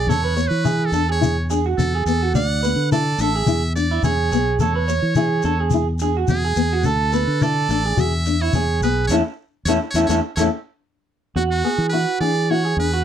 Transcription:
Already playing: muted trumpet D5
0.07 fingered electric bass E2, nylon-string guitar C#4, clean electric guitar A4, muted trumpet C#5, shekere
0.24 clean electric guitar B4
0.37 nylon-string guitar B3, clean electric guitar C#5, shekere
0.47 fingered electric bass E3, muted trumpet B4
0.64 nylon-string guitar E4, clean electric guitar G#4, shekere
0.86 muted trumpet A4
0.92 fingered electric bass E2, nylon-string guitar D4, clean electric guitar A4, shekere
1.09 clean electric guitar G#4, muted trumpet C#5
1.21 nylon-string guitar E4, shekere
1.50 nylon-string guitar D4, clean electric guitar G#4, shekere
1.66 clean electric guitar F#4
1.78 fingered electric bass E2, nylon-string guitar C#4, muted trumpet A4, shekere
1.95 clean electric guitar G#4
2.06 fingered electric bass E2, nylon-string guitar B3, muted trumpet A4, shekere
2.22 clean electric guitar F#4
2.34 fingered electric bass D2, nylon-string guitar C#4, clean electric guitar D5, muted trumpet F#5, shekere
2.63 nylon-string guitar B3, clean electric guitar B4, shekere
2.76 fingered electric bass D3
2.92 nylon-string guitar E4, clean electric guitar A4, muted trumpet D5, shekere
3.18 fingered electric bass A1, nylon-string guitar D4, clean electric guitar A4, muted trumpet E5, shekere
3.36 clean electric guitar G#4
3.46 fingered electric bass E2, nylon-string guitar E4, shekere
3.75 nylon-string guitar D4, muted trumpet D5, shekere
3.91 clean electric guitar E4
4.03 fingered electric bass E2, nylon-string guitar C#4, clean electric guitar G#4, muted trumpet C#5, shekere
4.31 fingered electric bass B1, nylon-string guitar B3, clean electric guitar G#4, shekere
4.59 fingered electric bass E2, nylon-string guitar A3, clean electric guitar A4, muted trumpet C#5, shekere
4.75 clean electric guitar B4
4.88 nylon-string guitar B3, clean electric guitar C#5, shekere
5.02 fingered electric bass E3
5.15 nylon-string guitar E4, clean electric guitar G#4, shekere
5.43 fingered electric bass E2, nylon-string guitar D4, clean electric guitar A4, shekere
5.60 clean electric guitar G#4
5.70 nylon-string guitar E4, shekere
5.99 nylon-string guitar D4, clean electric guitar G#4, shekere
6.17 clean electric guitar F#4
6.28 fingered electric bass E2, nylon-string guitar C#4, muted trumpet G#4, shekere
6.45 clean electric guitar G#4
6.56 fingered electric bass E2, nylon-string guitar B3, shekere
6.73 clean electric guitar F#4
6.84 fingered electric bass D2, nylon-string guitar C#4, muted trumpet A4, clean electric guitar A4, shekere
7.13 nylon-string guitar B3, clean electric guitar B4, shekere
7.27 fingered electric bass D3
7.41 nylon-string guitar E4, clean electric guitar A4, muted trumpet D5, shekere
7.69 fingered electric bass A1, nylon-string guitar D4, clean electric guitar A4, shekere
7.86 clean electric guitar G#4
7.97 fingered electric bass E2, nylon-string guitar F#4, muted trumpet E5, shekere
8.26 nylon-string guitar D4, shekere
8.41 clean electric guitar E4, muted trumpet C#5
8.53 fingered electric bass E2, nylon-string guitar C#4, clean electric guitar G#4, shekere
8.81 fingered electric bass B1, nylon-string guitar B3, clean electric guitar G#4, muted trumpet B4, shekere
9.07 fingered electric bass E2, clean electric guitar C#4 E4 A4, muted trumpet C#5, shekere
9.11 nylon-string guitar A3 C#4 E4
9.65 fingered electric bass E2, nylon-string guitar A3 C#4 E4, clean electric guitar C#4 E4 A4, muted trumpet C#5, shekere
9.91 fingered electric bass E2, muted trumpet C#5
9.95 nylon-string guitar A3 C#4 E4, clean electric guitar C#4 E4 A4, shekere
10.07 fingered electric bass E2, nylon-string guitar A3 C#4 E4, clean electric guitar A4, muted trumpet C#5, shekere
10.11 clean electric guitar C#4 E4
10.36 fingered electric bass E2, nylon-string guitar A3, clean electric guitar C#4 E4 A4, muted trumpet C#5, shekere
10.40 nylon-string guitar C#4 E4
11.36 fingered electric bass E2, nylon-string guitar C#4, clean electric guitar F#4, muted trumpet F#4
11.51 muted trumpet F#4
11.64 nylon-string guitar B3, clean electric guitar G#4
11.78 fingered electric bass E3
11.89 nylon-string guitar E4, clean electric guitar F#4, muted trumpet B4
12.20 fingered electric bass E3, nylon-string guitar D4, clean electric guitar G#4, muted trumpet D5
12.50 nylon-string guitar E4, clean electric guitar F#4, muted trumpet C#5
12.65 clean electric guitar G#4
12.77 fingered electric bass E2, nylon-string guitar D4, muted trumpet B4
12.93 clean electric guitar F#4

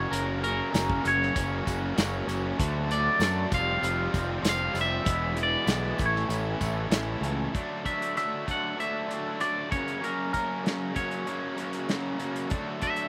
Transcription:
Already playing: overdriven electric guitar F#2 C#3 F#3 A#3 C#4 F#4, clean electric guitar C#5
0.11 fingered electric bass F#1, overdriven electric guitar F#2 C#3 F#3 A#3 C#4 F#4, clean electric guitar A#4, closed hi-hat, tambourine
0.44 overdriven electric guitar F#2 C#3 F#3 A#3 C#4 F#4, clean electric guitar A#4, closed hi-hat
0.72 fingered electric bass F#1, overdriven electric guitar F#2 C#3 F#3 A#3 C#4 F#4, snare, closed hi-hat, tambourine
0.90 kick
1.03 fingered electric bass F#1, overdriven electric guitar F#2 C#3 F#3 A#3 C#4 F#4, closed hi-hat, tambourine
1.08 clean electric guitar C#5
1.22 snare
1.34 fingered electric bass F#1, overdriven electric guitar F#2 C#3 F#3 A#3 C#4 F#4, kick, closed hi-hat, tambourine
1.64 fingered electric bass F#1, overdriven electric guitar F#2 C#3 F#3 A#3 C#4 F#4, kick, tambourine
1.68 closed hi-hat
1.95 fingered electric bass F#1, overdriven electric guitar F#2 C#3 F#3 A#3 C#4 F#4, snare, closed hi-hat, tambourine
2.27 fingered electric bass F#1, overdriven electric guitar F#2 C#3 F#3 A#3 C#4 F#4, closed hi-hat, tambourine
2.58 fingered electric bass D2, overdriven electric guitar D3 F#3 A3 D4 F#4, kick, closed hi-hat, tambourine
2.88 overdriven electric guitar D3 F#3 A3 D4 F#4, clean electric guitar D5, closed hi-hat
3.19 fingered electric bass F#2, overdriven electric guitar D3 F#3 D4 F#4, snare, closed hi-hat, tambourine
3.23 overdriven electric guitar A3
3.52 fingered electric bass F1, overdriven electric guitar F3 G3 C4 F4, clean electric guitar F5, kick, closed hi-hat, tambourine
3.83 fingered electric bass F1, overdriven electric guitar F3 G3 C4 F4, closed hi-hat, tambourine
4.14 fingered electric bass F1, overdriven electric guitar F3 G3 C4 F4, kick, closed hi-hat, tambourine
4.42 fingered electric bass F1, overdriven electric guitar F3 G3 C4 F4, snare, closed hi-hat, tambourine
4.47 overdriven electric guitar G3 C4 F4, clean electric guitar F5
4.72 fingered electric bass F1, overdriven electric guitar F3 G3 C4 F4, closed hi-hat, tambourine
4.77 overdriven electric guitar F3 G3 C4 F4, clean electric guitar E5
5.05 fingered electric bass E1, overdriven electric guitar E2 B2 E3 G#3 B3 E4, kick, closed hi-hat, tambourine
5.37 overdriven electric guitar E2 B2 E3 G#3 B3 E4, closed hi-hat, tambourine
5.43 clean electric guitar D5
5.67 fingered electric bass B1, overdriven electric guitar E2 B2 E3 G#3 B3 E4, snare, closed hi-hat, tambourine
5.98 fingered electric bass A1, overdriven electric guitar A2 E3 A3 C#4 E4, kick, closed hi-hat, tambourine
6.06 clean electric guitar C#5
6.16 snare
6.28 fingered electric bass A1, overdriven electric guitar A2 E3 A3 C#4 E4, closed hi-hat, tambourine
6.60 fingered electric bass A1, overdriven electric guitar A2 E3 A3 C#4 E4, kick, closed hi-hat, tambourine
6.90 fingered electric bass A1, overdriven electric guitar A2 E3 A3 C#4 E4, snare, closed hi-hat, tambourine
7.21 fingered electric bass C#2, overdriven electric guitar A2 E3 A3 C#4 E4, closed hi-hat
7.53 overdriven electric guitar D3 F#3 A3 D4 F#4, kick, closed hi-hat
7.85 overdriven electric guitar D3 F#3 A3 D4 F#4, clean electric guitar E5, kick, closed hi-hat
8.02 closed hi-hat
8.17 overdriven electric guitar D3 F#3 A3 D4 F#4, clean electric guitar E5, cross-stick, closed hi-hat
8.47 overdriven electric guitar D3 F#3 A3 D4 F#4, kick, closed hi-hat
8.51 clean electric guitar F#5
8.77 overdriven electric guitar D3 F#3 A3 D4 F#4, clean electric guitar E5, closed hi-hat
9.09 overdriven electric guitar D3 F#3 A3 D4 F#4, closed hi-hat
9.40 overdriven electric guitar D3 F#3 A3 D4 F#4, clean electric guitar D5, cross-stick, closed hi-hat
9.70 overdriven electric guitar F#2 C#3 F#3 A#3 C#4, clean electric guitar C#5, kick, closed hi-hat
9.74 overdriven electric guitar F#2 C#3 F#3 A#3 C#4 F#4
9.88 closed hi-hat
10.03 overdriven electric guitar F#2 C#3 F#3 A#3 C#4 F#4, clean electric guitar A#4, closed hi-hat
10.33 overdriven electric guitar F#2 C#3 F#3 A#3 C#4 F#4, clean electric guitar A#4, kick, closed hi-hat
10.66 overdriven electric guitar F#2 C#3 F#3 A#3 C#4 F#4, snare, closed hi-hat
10.96 overdriven electric guitar F#2 C#3 F#3 A#3 C#4 F#4, clean electric guitar C#5, kick, closed hi-hat
11.11 closed hi-hat
11.26 overdriven electric guitar F#2 C#3 F#3 A#3 C#4 F#4, closed hi-hat
11.56 overdriven electric guitar F#2 C#3 F#3 A#3 C#4 F#4, closed hi-hat
11.73 closed hi-hat
11.88 overdriven electric guitar F#2 C#3 F#3 A#3 C#4 F#4, snare, closed hi-hat
12.20 overdriven electric guitar F#2 C#3 F#3 A#3 C#4 F#4, closed hi-hat
12.36 closed hi-hat
12.50 overdriven electric guitar D3 F#3 A3 D4 F#4, kick, closed hi-hat
12.81 overdriven electric guitar D3 F#3 A3 D4 F#4, clean electric guitar E5, kick, closed hi-hat
12.96 closed hi-hat

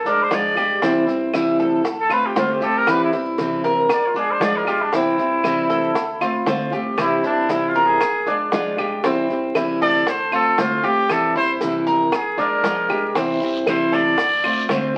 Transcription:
Already playing: analog synth bass A#1
0.05 nylon-string guitar G#3 D4 F4, cuban tres D4, trumpet A#4, high bongo, maracas
0.23 trumpet C5
0.31 analog synth bass C2, nylon-string guitar F3 G#3 D4 F4, trumpet D5, high bongo, low bongo, maracas
0.56 nylon-string guitar G#3 D4 F4, cuban tres G4, high bongo, claves, maracas
0.82 nylon-string guitar C3 E3 G3 C4 E4, cuban tres C4, high bongo, maracas
1.07 nylon-string guitar G3 C4 E4, maracas
1.33 nylon-string guitar C3 E3 G3 C4 E4, cuban tres E4, high bongo, claves, maracas
1.59 analog synth bass D2, cuban tres A4, maracas
1.84 muted nylon-string guitar stroke, high bongo, maracas
2.00 trumpet A4
2.09 nylon-string guitar A3 C4 F4, cuban tres F4, trumpet B4, claves, maracas
2.26 trumpet G4
2.35 analog synth bass C2, nylon-string guitar D3 A3 C4 F4, trumpet F4, cuban tres C5, high bongo, low bongo, maracas
2.52 trumpet G4
2.61 nylon-string guitar A3 C4 F4, cuban tres G4, trumpet A4, maracas
2.78 trumpet A#4
2.86 nylon-string guitar C3 E3 G3 C4 E4, high bongo, claves, maracas
2.90 trumpet B4
3.04 trumpet E4
3.12 nylon-string guitar G3 C4 E4, cuban tres E4, high bongo, maracas
3.38 nylon-string guitar C3 E3 G3 C4 E4, high bongo, maracas
3.64 analog synth bass A#1, cuban tres A#4, maracas
3.89 muted nylon-string guitar stroke, high bongo, claves, maracas
3.93 trumpet D5
4.07 trumpet F4
4.14 nylon-string guitar G#3 D4 F4, cuban tres D4, trumpet G#4, high bongo, maracas
4.31 trumpet C5
4.40 analog synth bass C2, nylon-string guitar F3 G#3 D4 F4, trumpet D5, high bongo, low bongo, maracas
4.56 trumpet A#4
4.66 nylon-string guitar G#3 D4 F4, trumpet F4, cuban tres G4, high bongo, claves, maracas
4.82 trumpet D4
4.92 nylon-string guitar C3 E3 G3 C4 E4, cuban tres C4, trumpet E4, high bongo, maracas
5.18 nylon-string guitar G3 C4 E4, maracas
5.43 nylon-string guitar C3 E3 G3 C4 E4, cuban tres E4, high bongo, claves, maracas
5.70 analog synth bass D2, cuban tres A4, maracas
5.95 muted nylon-string guitar stroke, high bongo, maracas
6.21 nylon-string guitar A3 C4 F4, cuban tres F4, claves, maracas
6.46 analog synth bass C2, nylon-string guitar D3 A3 C4 F4, cuban tres C5, high bongo, low bongo, maracas
6.72 nylon-string guitar A3 C4 F4, cuban tres G4, maracas
6.97 nylon-string guitar C3 E3 G3 C4 E4, trumpet E4, high bongo, claves, maracas
7.23 nylon-string guitar G3 C4 E4, trumpet D4, cuban tres E4, high bongo, maracas
7.48 nylon-string guitar C3 E3 G3 C4 E4, trumpet E4, high bongo, maracas
7.69 trumpet F4
7.75 analog synth bass A#1, cuban tres A#4, maracas
7.86 trumpet G#4
8.00 muted nylon-string guitar stroke, high bongo, claves, maracas
8.26 nylon-string guitar G#3 D4 F4, cuban tres D4, high bongo, maracas
8.52 analog synth bass C2, nylon-string guitar F3 G#3 D4 F4, high bongo, low bongo, maracas
8.78 nylon-string guitar G#3 D4 F4, cuban tres G4, high bongo, claves, maracas
9.04 nylon-string guitar C3 E3 G3 C4 E4, cuban tres C4, high bongo, maracas
9.30 nylon-string guitar G3 C4 E4, maracas
9.54 nylon-string guitar C3 E3 G3 C4 E4, cuban tres E4, high bongo, claves, maracas
9.81 analog synth bass D2, cuban tres A4, trumpet D5, maracas
10.06 trumpet C5, muted nylon-string guitar stroke, high bongo, maracas
10.32 nylon-string guitar A3 C4 F4, cuban tres F4, trumpet A4, claves, maracas
10.58 analog synth bass C2, nylon-string guitar D3 A3 C4 F4, trumpet F4, cuban tres C5, high bongo, low bongo, maracas
10.83 nylon-string guitar A3 C4 F4, cuban tres G4, trumpet G4, maracas
11.09 nylon-string guitar C3 E3 G3 C4 E4, trumpet A4, high bongo, claves, maracas
11.35 nylon-string guitar G3 C4 E4, cuban tres E4, trumpet C5, high bongo, maracas
11.61 nylon-string guitar C3 E3 G3 C4 E4, high bongo, maracas
11.86 analog synth bass A#1, cuban tres A#4, maracas
12.12 trumpet G#4, muted nylon-string guitar stroke, high bongo, claves, maracas
12.37 nylon-string guitar G#3 D4 F4, cuban tres D4, trumpet A#4, high bongo, maracas
12.63 analog synth bass C2, nylon-string guitar F3 G#3 D4 F4, high bongo, low bongo, maracas
12.89 nylon-string guitar G#3 D4 F4, cuban tres G4, high bongo, claves, maracas
13.15 nylon-string guitar C3 E3 G3 C4 E4, cuban tres C4, high bongo, long guiro, maracas
13.41 nylon-string guitar G3 C4 E4, maracas
13.66 nylon-string guitar C3 E3 G3 C4 E4, cuban tres E4, trumpet C5, high bongo, short guiro, claves, maracas
13.92 analog synth bass D2, cuban tres A4, trumpet D5, short guiro, maracas
14.18 muted nylon-string guitar stroke, high bongo, long guiro, maracas
14.44 nylon-string guitar A3 C4 F4, cuban tres F4, claves, maracas
14.69 analog synth bass C2, nylon-string guitar D3 A3 C4 F4, cuban tres C5, high bongo, low bongo, short guiro, maracas

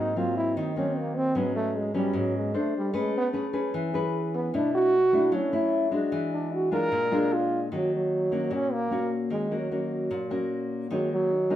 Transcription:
Already playing: nylon-string guitar G#2 F#3 A#3 C4
0.00 trombone D#4
0.16 nylon-string guitar F#3 A#3 C4, trombone F4
0.37 trombone E4
0.57 nylon-string guitar D#3, trombone D#4
0.76 nylon-string guitar F#3 A#3 C4, trombone C#4
0.98 trombone A#3
1.16 trombone C4
1.35 nylon-string guitar G#2 F#3 B3 C#4, trombone B3
1.56 trombone A3
1.77 trombone G#3
1.94 nylon-string guitar F#3 B3 C#4, trombone G3
2.13 nylon-string guitar G#2, trombone F#3
2.37 trombone G#3
2.54 nylon-string guitar D4 A4 C5
2.58 trombone A3
2.78 trombone G3
2.94 nylon-string guitar A3 C#4 G#4 B4
2.98 trombone G#3
3.18 trombone B3
3.33 nylon-string guitar C#4 G#4 B4
3.53 nylon-string guitar C#4 G#4 B4
3.74 nylon-string guitar E3
3.93 nylon-string guitar C#4 G#4 B4
4.35 trombone B3
4.53 nylon-string guitar B2 A3 D4 E4, trombone D4
4.75 trombone F#4
5.13 nylon-string guitar A3 D4 E4
5.32 nylon-string guitar F#3, trombone C#4
5.52 nylon-string guitar A3 E4
5.91 nylon-string guitar G#3 D4 F#4
6.12 nylon-string guitar E3
6.34 trombone D4
6.54 trombone F#4
6.71 nylon-string guitar G#3 D4 F4, trombone A#4
6.92 nylon-string guitar A#2
7.11 nylon-string guitar G#3 D4 F4
7.33 trombone F4
7.72 nylon-string guitar D#3 A#3 C#4 F#4, trombone F#3
7.96 trombone F#3
8.32 nylon-string guitar A#3 C#4 F#4
8.51 nylon-string guitar A#2, trombone C#4
8.73 trombone A#3
8.91 nylon-string guitar A#3 C#4 F#4
9.30 nylon-string guitar D#3, trombone G#3
9.51 nylon-string guitar A#3 C#4 F#4
9.58 trombone F#3
9.71 trombone F#3, nylon-string guitar A#3 C#4 F#4
10.11 nylon-string guitar A#2
10.30 nylon-string guitar A#3 C#4 F#4
10.90 nylon-string guitar D#3 G#3 A#3 D#4, trombone F#3
11.13 trombone F#3
11.50 nylon-string guitar G#3 A#3 D#4

